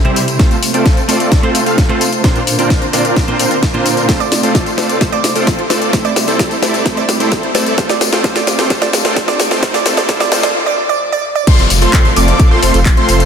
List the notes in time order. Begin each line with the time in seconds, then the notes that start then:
Already playing: C3 G3 E4 C5
0.04 C3 G3 C4 E4 G4 C5, closed hi-hat
0.16 open hi-hat, tambourine
0.28 closed hi-hat, tambourine
0.39 C3 A3 C4 F4 A4 C5, kick, snare, closed hi-hat, tambourine
0.51 closed hi-hat, tambourine
0.63 open hi-hat, tambourine
0.73 A3 C4 F4 A4 C5 D5, closed hi-hat, tambourine
0.86 kick, snare, closed hi-hat, tambourine
0.97 closed hi-hat, tambourine
1.08 A3 C4 F4 A4 C5 D5, open hi-hat, tambourine
1.20 closed hi-hat, tambourine
1.32 kick, snare, closed hi-hat, tambourine
1.42 A3 C4 F4 A4 C5, closed hi-hat
1.55 open hi-hat, tambourine
1.66 A3 C4 F4 A4 F5, closed hi-hat, tambourine
1.78 kick, snare, closed hi-hat, tambourine
1.89 A3 C4 F4 A4 C5, closed hi-hat
2.01 open hi-hat, tambourine
2.13 closed hi-hat, tambourine
2.23 A#2 D3 A#3 C4 D4 F4 A#4 C5, kick, snare, closed hi-hat, tambourine
2.36 closed hi-hat, tambourine
2.47 open hi-hat, tambourine
2.58 A#2 A#3 C4 D4 F4 A#4 C5 D5, closed hi-hat, tambourine
2.70 kick, snare, closed hi-hat, tambourine
2.82 closed hi-hat, tambourine
2.92 A#2 A#3 C4 D4 F4 A#4 C5 D5, open hi-hat, tambourine
3.05 closed hi-hat, tambourine
3.16 kick, snare, closed hi-hat, tambourine
3.27 A#2 A#3 C4 D4 F4 A#4 C5, closed hi-hat
3.39 C4 D4 F4 A#4 C5, open hi-hat, tambourine
3.51 closed hi-hat, tambourine
3.63 kick, snare, closed hi-hat, tambourine
3.73 A#2 A#3 C4 D4 F4 A#4 C5, closed hi-hat
3.86 open hi-hat, tambourine
3.97 closed hi-hat, tambourine
4.08 C3 A3 C4 F4 A4 C5, kick, snare, closed hi-hat, tambourine, riser
4.20 D5, closed hi-hat, tambourine
4.32 snare, open hi-hat, tambourine
4.43 A3 C4 F4 A4 C5 D5, closed hi-hat, tambourine
4.55 kick, snare, closed hi-hat, tambourine
4.66 closed hi-hat, tambourine
4.77 A3 C4 F4 A4 C5 D5, snare, open hi-hat, tambourine
4.89 closed hi-hat, tambourine
5.00 A3 C4 F4 A4 C5, kick, snare, closed hi-hat, tambourine
5.12 D5, closed hi-hat
5.24 snare, open hi-hat, tambourine
5.35 A3 C4 F4 A4 C5 D5, closed hi-hat, tambourine
5.47 kick, snare, closed hi-hat, tambourine
5.59 closed hi-hat
5.70 A3 C4 F4 A4 C5 D5, snare, open hi-hat, tambourine
5.82 closed hi-hat, tambourine
5.93 C3 G3 A3 C4 E4 A4 C5, kick, snare, closed hi-hat, tambourine
6.05 D5, closed hi-hat, tambourine
6.16 snare, open hi-hat, tambourine
6.27 A3 C4 E4 A4 C5 D5, closed hi-hat, tambourine
6.39 kick, snare, closed hi-hat, tambourine
6.51 closed hi-hat, tambourine
6.62 A3 C4 E4 A4 C5 D5, snare, open hi-hat, tambourine
6.74 closed hi-hat, tambourine
6.85 A3 C4 E4 C5, kick, snare, closed hi-hat, tambourine
6.97 D5, closed hi-hat
7.09 snare, open hi-hat, tambourine
7.20 A3 C4 E4 A4 C5 D5, closed hi-hat, tambourine
7.32 kick, snare, closed hi-hat, tambourine
7.43 closed hi-hat
7.54 A3 C4 E4 A4 C5 D5, snare, open hi-hat, tambourine
7.66 closed hi-hat, tambourine
7.77 A3 C4 F4 A4 C5, kick, snare, closed hi-hat, tambourine
7.89 D5, snare, closed hi-hat, tambourine
8.01 snare, open hi-hat, tambourine
8.12 A3 C4 F4 A4 C5 D5, snare, closed hi-hat, tambourine
8.23 A3 C4 F4 A4 C5, kick, snare, closed hi-hat, tambourine
8.36 D5, snare, closed hi-hat, tambourine
8.47 snare, open hi-hat, tambourine
8.58 A3 C4 F4 A4 C5 D5, snare, closed hi-hat, tambourine
8.69 A3 C4 F4 A4 C5, kick, snare, closed hi-hat, tambourine
8.82 D5, snare, closed hi-hat
8.93 snare, open hi-hat, tambourine
9.04 A3 C4 F4 A4 C5 D5, snare, closed hi-hat
9.16 A3 C4 F4 A4 C5, kick, snare, closed hi-hat, tambourine
9.28 D5, snare, closed hi-hat
9.40 snare, open hi-hat, tambourine
9.50 A3 C4 F4 A4 C5 D5, snare, closed hi-hat, tambourine
9.62 D3 A3 A#3 C4 F4 A4 C5, kick, snare, closed hi-hat, tambourine
9.74 D5, snare, closed hi-hat, tambourine
9.85 A3 C4 F4 A4 C5, snare, open hi-hat, tambourine
9.97 D5, snare, closed hi-hat, tambourine
10.08 A3 C4 F4 A4 C5, kick, snare, closed hi-hat, tambourine
10.20 D5, snare, closed hi-hat, tambourine
10.31 A3 C4 F4 A4 C5, snare, open hi-hat, tambourine
10.43 D5, snare, closed hi-hat, tambourine
10.66 D5
10.89 D5
11.12 D5
11.35 D5
11.47 C3 F3 A3 C4 F4 A4 C5 C6, kick, closed hi-hat, crash, tambourine, downlifter
11.59 F1, closed hi-hat, tambourine
11.70 F1, open hi-hat, tambourine
11.82 A3 C4 F4 A4 C5 C6, closed hi-hat, tambourine
11.93 kick, clap, closed hi-hat, tambourine
12.05 closed hi-hat, tambourine
12.16 F1 A3 C4 F4 A4 D5 D6, open hi-hat, tambourine
12.28 closed hi-hat, tambourine
12.39 kick, closed hi-hat, tambourine
12.51 A3 C4 F4 A4 C5 C6
12.62 F1 A3 C4 F4 A4 C5 C6, open hi-hat, tambourine
12.74 F1, closed hi-hat, tambourine
12.86 kick, clap, closed hi-hat, tambourine
12.97 A3 C4 F4 A4 C5 C6, closed hi-hat
13.09 F1, open hi-hat, tambourine
13.20 closed hi-hat, tambourine